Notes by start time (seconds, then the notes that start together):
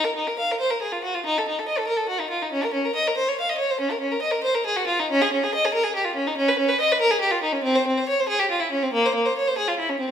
0.04 A#4
0.16 D#4
0.28 A#4
0.39 F5
0.51 A#4
0.60 C5
0.70 A#4
0.82 G#4
0.92 F4
1.04 F#4
1.14 F4
1.26 D#4
1.38 A4
1.48 D#4
1.59 A4
1.68 D#5
1.78 A4
1.87 A#4
1.97 A4
2.09 F#4
2.20 D#4
2.30 F4
2.42 D#4
2.52 C#4
2.64 A#4
2.74 C#4
2.85 A#4
2.95 D#5
3.08 A#4
3.17 C5
3.29 C#5
3.40 F5
3.50 D#5
3.58 C#5
3.70 C5
3.80 C#4
3.91 A#4
4.00 C#4
4.11 A#4
4.22 D#5
4.31 A#4
4.44 C5
4.55 A#4
4.66 G#4
4.76 F#4
4.87 F4
5.00 D#4
5.11 C#4
5.22 G#4
5.33 C#4
5.44 G#4
5.55 D#5
5.65 G#4
5.74 A#4
5.84 G#4
5.96 G4
6.05 F4
6.16 C#4
6.27 D#4
6.37 C#4
6.49 B4
6.59 C#4
6.68 B4
6.81 D#5
6.92 B4
7.01 A#4
7.11 G#4
7.21 G4
7.31 F4
7.43 D#4
7.52 C#4
7.64 C4
7.76 C5
7.87 C4
7.98 C5
8.09 C#5
8.20 C5
8.29 G#4
8.39 G4
8.51 F4
8.60 E4
8.71 C#4
8.83 C4
8.93 A#3
9.06 C5
9.15 A#3
9.26 C5
9.38 C#5
9.48 C5
9.58 G#4
9.68 F4
9.79 E4
9.89 C#4
10.00 C4